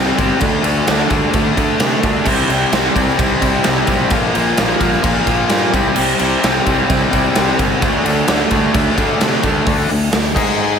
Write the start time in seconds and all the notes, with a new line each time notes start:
Already playing: C2 C3 G3 C4
0.17 G1 C3 G3 C4, kick, ride
0.40 D2 D3 A3 D4, kick, ride
0.63 D2 D3 A3 D4, ride
0.86 D2 D3 A3 D4, snare, ride
1.09 D2 D3 A3 D4, kick, ride
1.33 D2 D3 A3 D4, kick, ride
1.57 D2 D3 A3 D4, kick, ride
1.80 C3 D3 A3 D4, snare, ride
2.03 D2 D3 A3 D4, kick, ride
2.25 C2 C3 G3 C4 E4, kick, crash
2.50 C2 C3 G3 C4, ride
2.73 C2 C3 G3 C4, snare, ride
2.95 C2 C3 G3 C4, kick, ride
3.08 snare
3.18 C2 C3 G3 C4 E4, kick, ride
3.41 C2 C3 G3 C4, kick, ride
3.63 C2 C3 G3 C4, snare, ride
3.87 B1 C3 G3 C4, kick, ride
4.10 A#1 A#2 D3 F3 A#3, kick, ride
4.15 F4
4.34 A#1 A#2 F3 A#3, ride
4.57 A#1 A#2 F3 A#3, snare, ride
4.81 A#1 A#2 F3 A#3, kick, ride
4.93 snare
5.03 A#1 A#2 D3 F3 A#3, kick, ride
5.08 F4
5.27 A#1 A#2 F3 A#3, kick, ride
5.49 G2 A#2 F3 A#3, snare, ride
5.73 C2 C3 G3 C4 E4, kick, ride
5.96 C2 C3 G3 C4, crash
6.19 C2 C3 G3 C4, ride
6.41 C2 C3 G3 C4, snare, ride
6.64 C2 C3 G3 C4 E4, kick, ride
6.70 C3
6.87 C2 C3 G3 C4, kick, ride
7.10 C2 C3 G3 C4, kick, ride
7.35 C2 C3 G3 C4, snare, ride
7.57 G1 C3 G3 C4, kick, ride
7.79 D2 D3 F#3 A3 D4, kick, ride
7.84 A3 D4
8.04 D2 D3 A3 D4, ride
8.27 D2 D3 A3 D4, snare, ride
8.51 D2 D3 A3 D4, kick, ride
8.73 D2 D3 F#3 A3 D4, kick, ride
8.98 D2 D3 A3 D4, kick, ride
9.21 C3 D3 A3 D4, snare, ride
9.43 D2 D3 A3 D4, kick, ride
9.66 D2 D3 A3 D4, kick, open hi-hat
9.90 D2 D3 A3, open hi-hat
10.12 D2 D3 A3, snare, open hi-hat
10.35 G#2 G#3 D#4 G#4, kick, snare, crash